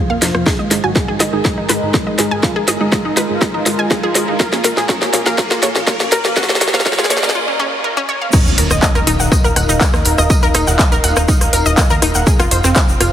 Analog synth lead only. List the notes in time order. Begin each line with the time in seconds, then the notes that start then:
0.10 A#3
0.22 F3
0.35 F3
0.46 G#4
0.59 G#3
0.71 G#3
0.84 F#4
0.96 G#3
1.09 G#3
1.20 G#3
1.33 G#4
1.45 G#3
1.58 G#3
1.70 G#3
1.94 G#3
2.07 G#3
2.19 G#4
2.31 G#3
2.43 F4
2.56 G#3
2.80 G#3
3.05 D#4
3.17 G#3
3.30 G#3
3.41 G#3
3.54 D#4
3.66 G#3
3.79 G#3
3.91 G#3
4.03 F4
4.15 G#3
4.28 G#3
4.40 A#4
4.53 A#3
4.64 A#3
4.77 G#4
4.89 A#3
5.02 A#3
5.14 A#3
5.26 A#4
5.38 A#3
5.51 A#3
5.63 A#3
5.87 A#3
6.00 A#3
6.12 A#4
6.25 A#3
6.37 F#4
6.49 A#3
6.74 A#3
6.86 A#3
6.98 G#4
7.10 A#3
7.23 A#3